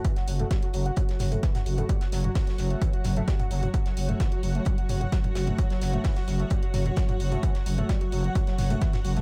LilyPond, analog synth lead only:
\new Staff \with { instrumentName = "Analog synth lead" } { \clef bass \time 4/4 \key fis \minor \tempo 4 = 130 e16 fis'16 fis16 a16 g16 fis'16 fis16 fis'16 fis16 fis16 fis16 a16 e16 fis'16 fis16 a16 | g16 fis'16 fis16 fis'16 fis16 fis16 fis16 a16 e16 fis'16 fis16 a16 g16 fis'16 fis16 fis'16 | fis16 fis16 fis16 a16 e16 fis'16 fis16 a16 g16 fis'16 fis16 fis'16 fis16 fis16 fis16 a16 | fis16 fis16 fis16 a16 e16 fis'16 fis16 a16 g16 fis'16 fis16 fis'16 fis16 fis16 fis16 a16 |
e16 fis'16 fis16 a16 g16 fis'16 fis16 fis'16 fis16 fis16 fis16 a16 e16 fis'16 fis16 a16 | }